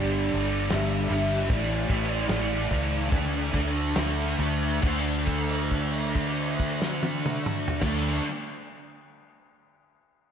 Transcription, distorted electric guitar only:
0.00 0.70 G2 loud
0.00 0.34 D3 loud
0.00 0.31 G3 loud
0.00 1.51 D4 medium
0.33 0.71 D3 medium
0.33 0.72 G3 medium
0.71 1.47 G2 medium
0.71 1.11 D3 medium
0.71 1.09 G3 medium
1.10 1.48 D3 medium
1.10 1.47 G3 medium
1.50 2.27 A2 loud
1.50 1.89 E3 loud
1.50 1.87 A3 loud
1.88 2.28 E3 medium
1.88 2.29 A3 medium
2.28 3.08 A2 medium
2.28 2.70 E3 medium
2.28 2.69 A3 medium
2.70 3.10 E3 medium
2.70 3.09 A3 medium
3.09 3.94 D3 loud
3.09 3.53 A3 loud
3.09 3.51 D4 loud
3.52 3.95 A3 medium
3.52 3.96 D4 medium
3.95 4.79 D3 medium
3.95 4.39 A3 medium
3.95 4.37 D4 medium
4.38 4.80 A3 medium
4.38 4.79 D4 medium
4.82 7.80 D3 loud
4.82 7.82 A3 loud
4.86 7.84 D4 loud
7.81 8.21 D3 loud
7.81 8.22 A3 loud
7.81 8.23 D4 loud

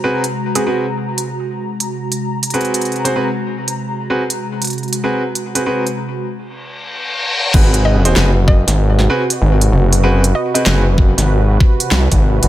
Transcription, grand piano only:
0.04 0.21 C4 medium
0.04 0.21 F#4 medium
0.04 0.21 G#4 medium
0.04 0.21 B4 medium
0.55 0.61 C4 medium
0.55 0.61 F#4 medium
0.55 0.61 G#4 medium
0.55 0.61 B4 medium
0.66 0.84 C4 medium
0.66 0.84 F#4 medium
0.66 0.84 G#4 medium
0.66 0.84 B4 medium
2.54 3.00 C4 medium
2.54 3.00 F#4 medium
2.54 3.00 G#4 medium
2.54 3.00 B4 medium
3.05 3.11 C4 medium
3.05 3.11 F#4 medium
3.05 3.11 G#4 medium
3.05 3.11 C5 medium
3.16 3.27 C4 medium
3.16 3.27 F#4 medium
3.16 3.27 G#4 medium
3.16 3.27 B4 medium
4.10 4.21 C4 medium
4.10 4.21 F#4 medium
4.10 4.21 G#4 medium
4.10 4.21 B4 medium
5.04 5.21 C4 medium
5.04 5.21 F#4 medium
5.04 5.21 G#4 medium
5.04 5.21 B4 medium
5.55 5.61 C4 medium
5.55 5.61 F#4 medium
5.55 5.61 G#4 medium
5.55 5.61 B4 medium
5.66 5.84 C4 medium
5.66 5.84 F#4 medium
5.66 5.84 G#4 medium
5.66 5.84 B4 medium
7.54 8.00 C4 medium
7.54 8.01 F#4 medium
7.54 8.01 G#4 medium
7.54 8.00 B4 loud
8.05 8.11 C4 medium
8.05 8.11 F#4 medium
8.05 8.11 G#4 medium
8.05 8.11 C5 loud
8.16 8.27 C4 medium
8.16 8.27 F#4 medium
8.16 8.27 G#4 medium
8.16 8.27 B4 loud
9.10 9.21 C4 loud
9.10 9.21 F#4 medium
9.10 9.21 G#4 medium
9.10 9.21 B4 loud
10.03 10.21 C4 medium
10.03 10.21 F#4 medium
10.03 10.21 G#4 medium
10.03 10.21 B4 loud
10.54 10.61 C4 medium
10.54 10.61 F#4 medium
10.54 10.61 G#4 medium
10.54 10.61 B4 medium
10.66 10.84 C4 medium
10.66 10.84 F#4 medium
10.66 10.84 G#4 medium
10.66 10.84 B4 loud

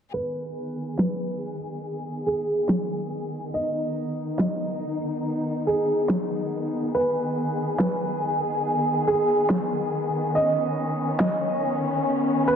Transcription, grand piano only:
0.14 0.91 B4 medium
0.99 1.55 B4 medium
2.26 3.46 G#4 medium
3.54 4.31 D#5 medium
4.39 4.95 D#5 medium
5.67 6.86 G#4 medium
6.95 7.72 B4 medium
7.80 8.35 B4 medium
9.07 10.27 G#4 medium
10.35 11.12 D#5 medium
11.20 11.76 D#5 medium
12.48 12.56 B4 medium

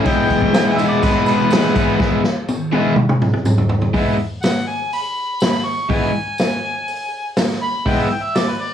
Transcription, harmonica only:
0.07 0.80 G5 loud
0.79 0.87 E5 loud
0.88 1.05 D5 medium
1.03 1.26 B4 medium
1.28 1.98 B4 medium
4.42 4.66 F#5 medium
4.67 4.91 G#5 medium
4.94 5.66 B5 loud
5.65 5.89 C#6 medium
5.91 7.33 G#5 loud
7.62 7.89 B5 loud
7.88 8.03 G5 loud
8.02 8.15 E5 medium
8.14 8.25 G5 medium
8.23 8.38 E5 loud
8.37 8.51 D5 medium
8.50 8.63 B4 medium
8.61 8.72 D5 medium

